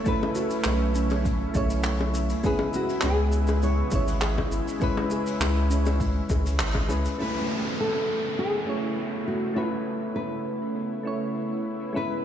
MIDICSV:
0, 0, Header, 1, 8, 480
1, 0, Start_track
1, 0, Tempo, 594059
1, 49, Time_signature, 4, 2, 24, 8
1, 9896, End_track
2, 0, Start_track
2, 0, Title_t, "Nylon-string guitar"
2, 0, Program_c, 0, 24
2, 62, Note_on_c, 0, 71, 94
2, 503, Note_off_c, 0, 71, 0
2, 540, Note_on_c, 0, 73, 78
2, 1462, Note_off_c, 0, 73, 0
2, 1985, Note_on_c, 0, 68, 104
2, 2201, Note_off_c, 0, 68, 0
2, 2226, Note_on_c, 0, 66, 88
2, 2441, Note_off_c, 0, 66, 0
2, 2462, Note_on_c, 0, 68, 97
2, 2903, Note_off_c, 0, 68, 0
2, 2935, Note_on_c, 0, 73, 92
2, 5300, Note_off_c, 0, 73, 0
2, 5833, Note_on_c, 0, 71, 91
2, 6303, Note_off_c, 0, 71, 0
2, 6306, Note_on_c, 0, 69, 80
2, 6745, Note_off_c, 0, 69, 0
2, 6778, Note_on_c, 0, 68, 78
2, 7303, Note_off_c, 0, 68, 0
2, 7303, Note_on_c, 0, 66, 78
2, 7495, Note_off_c, 0, 66, 0
2, 7495, Note_on_c, 0, 66, 72
2, 7724, Note_off_c, 0, 66, 0
2, 7727, Note_on_c, 0, 64, 81
2, 8176, Note_off_c, 0, 64, 0
2, 8207, Note_on_c, 0, 71, 74
2, 9136, Note_off_c, 0, 71, 0
2, 9671, Note_on_c, 0, 71, 96
2, 9896, Note_off_c, 0, 71, 0
2, 9896, End_track
3, 0, Start_track
3, 0, Title_t, "Steel pan"
3, 0, Program_c, 1, 114
3, 49, Note_on_c, 1, 69, 77
3, 266, Note_off_c, 1, 69, 0
3, 289, Note_on_c, 1, 66, 91
3, 425, Note_off_c, 1, 66, 0
3, 529, Note_on_c, 1, 64, 74
3, 746, Note_off_c, 1, 64, 0
3, 767, Note_on_c, 1, 61, 77
3, 997, Note_off_c, 1, 61, 0
3, 1970, Note_on_c, 1, 59, 81
3, 2187, Note_off_c, 1, 59, 0
3, 2450, Note_on_c, 1, 61, 98
3, 2585, Note_off_c, 1, 61, 0
3, 2931, Note_on_c, 1, 64, 82
3, 3147, Note_off_c, 1, 64, 0
3, 3409, Note_on_c, 1, 68, 111
3, 3627, Note_off_c, 1, 68, 0
3, 3892, Note_on_c, 1, 71, 85
3, 4108, Note_off_c, 1, 71, 0
3, 4133, Note_on_c, 1, 68, 98
3, 4267, Note_off_c, 1, 68, 0
3, 4372, Note_on_c, 1, 64, 73
3, 4588, Note_off_c, 1, 64, 0
3, 4607, Note_on_c, 1, 61, 78
3, 4837, Note_off_c, 1, 61, 0
3, 5327, Note_on_c, 1, 76, 79
3, 5545, Note_off_c, 1, 76, 0
3, 5565, Note_on_c, 1, 68, 101
3, 5784, Note_off_c, 1, 68, 0
3, 9896, End_track
4, 0, Start_track
4, 0, Title_t, "Synth keys"
4, 0, Program_c, 2, 88
4, 0, Control_c, 2, 64, 127
4, 0, Note_on_c, 2, 57, 82
4, 0, Note_on_c, 2, 61, 79
4, 0, Note_on_c, 2, 64, 78
4, 0, Note_on_c, 2, 73, 91
4, 35, Note_off_c, 2, 57, 0
4, 35, Note_on_c, 2, 57, 98
4, 45, Note_off_c, 2, 61, 0
4, 45, Note_on_c, 2, 61, 86
4, 55, Note_off_c, 2, 64, 0
4, 55, Note_on_c, 2, 64, 92
4, 64, Note_on_c, 2, 71, 106
4, 1215, Note_off_c, 2, 57, 0
4, 1220, Note_off_c, 2, 61, 0
4, 1225, Note_off_c, 2, 64, 0
4, 1230, Note_off_c, 2, 71, 0
4, 1241, Note_on_c, 2, 57, 87
4, 1252, Note_on_c, 2, 61, 80
4, 1261, Note_on_c, 2, 64, 82
4, 1270, Note_off_c, 2, 73, 0
4, 1270, Note_on_c, 2, 73, 100
4, 1938, Note_off_c, 2, 57, 0
4, 1943, Note_off_c, 2, 61, 0
4, 1948, Note_off_c, 2, 64, 0
4, 1952, Note_off_c, 2, 73, 0
4, 1967, Note_on_c, 2, 56, 93
4, 1978, Note_on_c, 2, 61, 90
4, 1981, Control_c, 2, 64, 0
4, 1989, Note_on_c, 2, 64, 85
4, 1993, Note_on_c, 2, 71, 110
4, 2139, Control_c, 2, 64, 127
4, 3141, Note_off_c, 2, 56, 0
4, 3146, Note_off_c, 2, 61, 0
4, 3152, Note_off_c, 2, 64, 0
4, 3154, Note_off_c, 2, 71, 0
4, 3165, Note_on_c, 2, 56, 85
4, 3174, Note_on_c, 2, 61, 76
4, 3182, Note_on_c, 2, 64, 82
4, 3195, Note_on_c, 2, 73, 99
4, 3860, Note_off_c, 2, 56, 0
4, 3864, Note_off_c, 2, 61, 0
4, 3869, Note_off_c, 2, 64, 0
4, 3875, Note_off_c, 2, 73, 0
4, 3877, Note_on_c, 2, 56, 103
4, 3890, Note_on_c, 2, 61, 92
4, 3899, Note_on_c, 2, 64, 90
4, 3907, Note_on_c, 2, 71, 112
4, 5056, Note_off_c, 2, 56, 0
4, 5062, Note_off_c, 2, 61, 0
4, 5067, Note_off_c, 2, 64, 0
4, 5071, Note_off_c, 2, 71, 0
4, 5565, Note_on_c, 2, 56, 73
4, 5571, Note_on_c, 2, 64, 64
4, 5572, Note_on_c, 2, 61, 71
4, 5581, Note_on_c, 2, 71, 84
4, 5780, Note_off_c, 2, 56, 0
4, 5783, Note_off_c, 2, 61, 0
4, 5783, Note_off_c, 2, 64, 0
4, 5788, Note_off_c, 2, 71, 0
4, 5805, Note_on_c, 2, 57, 80
4, 5811, Note_on_c, 2, 61, 75
4, 5819, Control_c, 2, 64, 0
4, 5820, Note_on_c, 2, 64, 69
4, 5832, Note_on_c, 2, 71, 86
4, 5967, Control_c, 2, 64, 127
4, 6980, Note_off_c, 2, 57, 0
4, 6983, Note_off_c, 2, 61, 0
4, 6987, Note_off_c, 2, 64, 0
4, 6993, Note_off_c, 2, 71, 0
4, 6997, Note_on_c, 2, 57, 69
4, 7004, Note_on_c, 2, 61, 63
4, 7017, Note_on_c, 2, 64, 63
4, 7024, Note_on_c, 2, 73, 79
4, 7696, Note_off_c, 2, 57, 0
4, 7700, Note_off_c, 2, 61, 0
4, 7706, Note_off_c, 2, 64, 0
4, 7710, Note_off_c, 2, 73, 0
4, 7711, Note_on_c, 2, 57, 83
4, 7722, Note_on_c, 2, 61, 71
4, 7728, Note_on_c, 2, 64, 76
4, 7738, Note_on_c, 2, 71, 94
4, 8893, Note_off_c, 2, 57, 0
4, 8898, Note_off_c, 2, 61, 0
4, 8901, Note_off_c, 2, 64, 0
4, 8907, Note_off_c, 2, 71, 0
4, 8915, Note_on_c, 2, 57, 73
4, 8926, Note_on_c, 2, 61, 65
4, 8933, Note_on_c, 2, 64, 66
4, 8947, Note_on_c, 2, 73, 79
4, 9615, Note_off_c, 2, 57, 0
4, 9620, Note_off_c, 2, 61, 0
4, 9624, Note_off_c, 2, 64, 0
4, 9631, Note_off_c, 2, 73, 0
4, 9638, Note_on_c, 2, 56, 85
4, 9651, Note_on_c, 2, 61, 79
4, 9658, Note_on_c, 2, 64, 77
4, 9660, Control_c, 2, 64, 0
4, 9665, Note_on_c, 2, 71, 92
4, 9818, Control_c, 2, 64, 127
4, 9896, Note_off_c, 2, 56, 0
4, 9896, Note_off_c, 2, 61, 0
4, 9896, Note_off_c, 2, 64, 0
4, 9896, Note_off_c, 2, 71, 0
4, 9896, End_track
5, 0, Start_track
5, 0, Title_t, "Analog synth pad"
5, 0, Program_c, 3, 89
5, 0, Note_on_c, 3, 49, 84
5, 0, Note_on_c, 3, 57, 83
5, 0, Note_on_c, 3, 64, 103
5, 55, Note_on_c, 3, 61, 75
5, 1937, Note_off_c, 3, 64, 0
5, 1939, Note_off_c, 3, 57, 0
5, 1953, Note_off_c, 3, 61, 0
5, 1973, Note_on_c, 3, 59, 77
5, 1973, Note_on_c, 3, 64, 99
5, 1976, Note_on_c, 3, 56, 80
5, 3872, Note_off_c, 3, 59, 0
5, 3887, Note_on_c, 3, 61, 84
5, 5776, Note_off_c, 3, 49, 0
5, 5779, Note_off_c, 3, 64, 0
5, 5780, Note_off_c, 3, 56, 0
5, 5789, Note_off_c, 3, 61, 0
5, 5809, Note_on_c, 3, 59, 68
5, 5810, Note_on_c, 3, 57, 72
5, 5811, Note_on_c, 3, 49, 75
5, 5811, Note_on_c, 3, 64, 90
5, 9617, Note_off_c, 3, 57, 0
5, 9659, Note_on_c, 3, 56, 69
5, 9896, Note_off_c, 3, 49, 0
5, 9896, Note_off_c, 3, 56, 0
5, 9896, Note_off_c, 3, 59, 0
5, 9896, Note_off_c, 3, 64, 0
5, 9896, End_track
6, 0, Start_track
6, 0, Title_t, "Sub bass"
6, 0, Program_c, 4, 38
6, 528, Note_on_c, 4, 35, 108
6, 1177, Note_off_c, 4, 35, 0
6, 1252, Note_on_c, 4, 35, 85
6, 1899, Note_off_c, 4, 35, 0
6, 2452, Note_on_c, 4, 37, 102
6, 3099, Note_off_c, 4, 37, 0
6, 3171, Note_on_c, 4, 32, 85
6, 3579, Note_off_c, 4, 32, 0
6, 3645, Note_on_c, 4, 32, 91
6, 3724, Note_off_c, 4, 32, 0
6, 4365, Note_on_c, 4, 37, 103
6, 5016, Note_off_c, 4, 37, 0
6, 5087, Note_on_c, 4, 37, 89
6, 5327, Note_on_c, 4, 32, 94
6, 5339, Note_off_c, 4, 37, 0
6, 5567, Note_on_c, 4, 37, 86
6, 5579, Note_off_c, 4, 32, 0
6, 5719, Note_off_c, 4, 37, 0
6, 9896, End_track
7, 0, Start_track
7, 0, Title_t, "Downlifter"
7, 0, Program_c, 5, 103
7, 5806, Note_on_c, 5, 60, 57
7, 9648, Note_off_c, 5, 60, 0
7, 9896, End_track
8, 0, Start_track
8, 0, Title_t, "Drums"
8, 43, Note_on_c, 9, 82, 46
8, 44, Note_on_c, 9, 46, 55
8, 49, Note_on_c, 9, 36, 115
8, 123, Note_off_c, 9, 82, 0
8, 125, Note_off_c, 9, 46, 0
8, 130, Note_off_c, 9, 36, 0
8, 185, Note_on_c, 9, 60, 92
8, 266, Note_off_c, 9, 60, 0
8, 282, Note_on_c, 9, 82, 81
8, 363, Note_off_c, 9, 82, 0
8, 407, Note_on_c, 9, 46, 71
8, 408, Note_on_c, 9, 82, 58
8, 488, Note_off_c, 9, 46, 0
8, 489, Note_off_c, 9, 82, 0
8, 515, Note_on_c, 9, 82, 50
8, 518, Note_on_c, 9, 39, 90
8, 518, Note_on_c, 9, 46, 52
8, 534, Note_on_c, 9, 60, 63
8, 596, Note_off_c, 9, 82, 0
8, 598, Note_off_c, 9, 46, 0
8, 599, Note_off_c, 9, 39, 0
8, 615, Note_off_c, 9, 60, 0
8, 767, Note_on_c, 9, 82, 79
8, 848, Note_off_c, 9, 82, 0
8, 886, Note_on_c, 9, 46, 64
8, 888, Note_on_c, 9, 82, 63
8, 901, Note_on_c, 9, 60, 91
8, 967, Note_off_c, 9, 46, 0
8, 969, Note_off_c, 9, 82, 0
8, 981, Note_off_c, 9, 60, 0
8, 1007, Note_on_c, 9, 46, 62
8, 1011, Note_on_c, 9, 36, 95
8, 1011, Note_on_c, 9, 82, 49
8, 1088, Note_off_c, 9, 46, 0
8, 1091, Note_off_c, 9, 82, 0
8, 1092, Note_off_c, 9, 36, 0
8, 1247, Note_on_c, 9, 82, 75
8, 1253, Note_on_c, 9, 36, 105
8, 1259, Note_on_c, 9, 60, 58
8, 1328, Note_off_c, 9, 82, 0
8, 1333, Note_off_c, 9, 36, 0
8, 1340, Note_off_c, 9, 60, 0
8, 1375, Note_on_c, 9, 82, 61
8, 1379, Note_on_c, 9, 46, 66
8, 1455, Note_off_c, 9, 82, 0
8, 1460, Note_off_c, 9, 46, 0
8, 1482, Note_on_c, 9, 82, 53
8, 1488, Note_on_c, 9, 39, 95
8, 1493, Note_on_c, 9, 46, 65
8, 1563, Note_off_c, 9, 82, 0
8, 1569, Note_off_c, 9, 39, 0
8, 1574, Note_off_c, 9, 46, 0
8, 1621, Note_on_c, 9, 60, 90
8, 1702, Note_off_c, 9, 60, 0
8, 1732, Note_on_c, 9, 82, 82
8, 1813, Note_off_c, 9, 82, 0
8, 1856, Note_on_c, 9, 46, 62
8, 1856, Note_on_c, 9, 82, 56
8, 1937, Note_off_c, 9, 46, 0
8, 1937, Note_off_c, 9, 82, 0
8, 1964, Note_on_c, 9, 46, 55
8, 1968, Note_on_c, 9, 82, 54
8, 1973, Note_on_c, 9, 36, 106
8, 2045, Note_off_c, 9, 46, 0
8, 2049, Note_off_c, 9, 82, 0
8, 2054, Note_off_c, 9, 36, 0
8, 2092, Note_on_c, 9, 60, 92
8, 2173, Note_off_c, 9, 60, 0
8, 2210, Note_on_c, 9, 82, 66
8, 2291, Note_off_c, 9, 82, 0
8, 2333, Note_on_c, 9, 46, 74
8, 2339, Note_on_c, 9, 82, 59
8, 2414, Note_off_c, 9, 46, 0
8, 2420, Note_off_c, 9, 82, 0
8, 2433, Note_on_c, 9, 39, 95
8, 2440, Note_on_c, 9, 46, 59
8, 2443, Note_on_c, 9, 82, 50
8, 2457, Note_on_c, 9, 60, 56
8, 2513, Note_off_c, 9, 39, 0
8, 2521, Note_off_c, 9, 46, 0
8, 2524, Note_off_c, 9, 82, 0
8, 2537, Note_off_c, 9, 60, 0
8, 2682, Note_on_c, 9, 82, 77
8, 2762, Note_off_c, 9, 82, 0
8, 2805, Note_on_c, 9, 82, 54
8, 2811, Note_on_c, 9, 46, 70
8, 2818, Note_on_c, 9, 60, 87
8, 2886, Note_off_c, 9, 82, 0
8, 2892, Note_off_c, 9, 46, 0
8, 2899, Note_off_c, 9, 60, 0
8, 2922, Note_on_c, 9, 46, 63
8, 2928, Note_on_c, 9, 82, 52
8, 3003, Note_off_c, 9, 46, 0
8, 3008, Note_off_c, 9, 82, 0
8, 3159, Note_on_c, 9, 82, 82
8, 3165, Note_on_c, 9, 60, 62
8, 3171, Note_on_c, 9, 36, 105
8, 3240, Note_off_c, 9, 82, 0
8, 3245, Note_off_c, 9, 60, 0
8, 3252, Note_off_c, 9, 36, 0
8, 3292, Note_on_c, 9, 82, 53
8, 3294, Note_on_c, 9, 46, 67
8, 3373, Note_off_c, 9, 82, 0
8, 3375, Note_off_c, 9, 46, 0
8, 3402, Note_on_c, 9, 46, 61
8, 3403, Note_on_c, 9, 82, 45
8, 3404, Note_on_c, 9, 39, 95
8, 3483, Note_off_c, 9, 46, 0
8, 3484, Note_off_c, 9, 82, 0
8, 3485, Note_off_c, 9, 39, 0
8, 3538, Note_on_c, 9, 36, 54
8, 3540, Note_on_c, 9, 60, 96
8, 3619, Note_off_c, 9, 36, 0
8, 3621, Note_off_c, 9, 60, 0
8, 3649, Note_on_c, 9, 82, 84
8, 3730, Note_off_c, 9, 82, 0
8, 3774, Note_on_c, 9, 46, 59
8, 3782, Note_on_c, 9, 82, 58
8, 3855, Note_off_c, 9, 46, 0
8, 3863, Note_off_c, 9, 82, 0
8, 3885, Note_on_c, 9, 82, 56
8, 3888, Note_on_c, 9, 46, 69
8, 3891, Note_on_c, 9, 36, 115
8, 3966, Note_off_c, 9, 82, 0
8, 3969, Note_off_c, 9, 46, 0
8, 3972, Note_off_c, 9, 36, 0
8, 4018, Note_on_c, 9, 60, 98
8, 4099, Note_off_c, 9, 60, 0
8, 4125, Note_on_c, 9, 82, 68
8, 4205, Note_off_c, 9, 82, 0
8, 4254, Note_on_c, 9, 82, 57
8, 4255, Note_on_c, 9, 46, 74
8, 4335, Note_off_c, 9, 82, 0
8, 4336, Note_off_c, 9, 46, 0
8, 4366, Note_on_c, 9, 82, 48
8, 4368, Note_on_c, 9, 46, 54
8, 4375, Note_on_c, 9, 39, 107
8, 4380, Note_on_c, 9, 60, 62
8, 4447, Note_off_c, 9, 82, 0
8, 4449, Note_off_c, 9, 46, 0
8, 4456, Note_off_c, 9, 39, 0
8, 4461, Note_off_c, 9, 60, 0
8, 4611, Note_on_c, 9, 82, 85
8, 4691, Note_off_c, 9, 82, 0
8, 4734, Note_on_c, 9, 82, 66
8, 4736, Note_on_c, 9, 46, 66
8, 4740, Note_on_c, 9, 60, 89
8, 4814, Note_off_c, 9, 82, 0
8, 4816, Note_off_c, 9, 46, 0
8, 4821, Note_off_c, 9, 60, 0
8, 4849, Note_on_c, 9, 36, 95
8, 4849, Note_on_c, 9, 46, 68
8, 4850, Note_on_c, 9, 82, 49
8, 4929, Note_off_c, 9, 46, 0
8, 4930, Note_off_c, 9, 36, 0
8, 4930, Note_off_c, 9, 82, 0
8, 5085, Note_on_c, 9, 82, 84
8, 5088, Note_on_c, 9, 36, 103
8, 5099, Note_on_c, 9, 60, 68
8, 5166, Note_off_c, 9, 82, 0
8, 5169, Note_off_c, 9, 36, 0
8, 5179, Note_off_c, 9, 60, 0
8, 5215, Note_on_c, 9, 46, 65
8, 5223, Note_on_c, 9, 82, 61
8, 5296, Note_off_c, 9, 46, 0
8, 5304, Note_off_c, 9, 82, 0
8, 5326, Note_on_c, 9, 39, 107
8, 5326, Note_on_c, 9, 46, 65
8, 5332, Note_on_c, 9, 82, 51
8, 5407, Note_off_c, 9, 39, 0
8, 5407, Note_off_c, 9, 46, 0
8, 5413, Note_off_c, 9, 82, 0
8, 5452, Note_on_c, 9, 60, 95
8, 5454, Note_on_c, 9, 36, 56
8, 5532, Note_off_c, 9, 60, 0
8, 5535, Note_off_c, 9, 36, 0
8, 5572, Note_on_c, 9, 82, 74
8, 5653, Note_off_c, 9, 82, 0
8, 5698, Note_on_c, 9, 82, 59
8, 5702, Note_on_c, 9, 46, 73
8, 5779, Note_off_c, 9, 82, 0
8, 5782, Note_off_c, 9, 46, 0
8, 7610, Note_on_c, 9, 46, 53
8, 7691, Note_off_c, 9, 46, 0
8, 8083, Note_on_c, 9, 46, 55
8, 8164, Note_off_c, 9, 46, 0
8, 8575, Note_on_c, 9, 46, 58
8, 8655, Note_off_c, 9, 46, 0
8, 8680, Note_on_c, 9, 46, 57
8, 8760, Note_off_c, 9, 46, 0
8, 9051, Note_on_c, 9, 46, 56
8, 9131, Note_off_c, 9, 46, 0
8, 9167, Note_on_c, 9, 46, 51
8, 9247, Note_off_c, 9, 46, 0
8, 9530, Note_on_c, 9, 46, 55
8, 9611, Note_off_c, 9, 46, 0
8, 9639, Note_on_c, 9, 46, 52
8, 9720, Note_off_c, 9, 46, 0
8, 9896, End_track
0, 0, End_of_file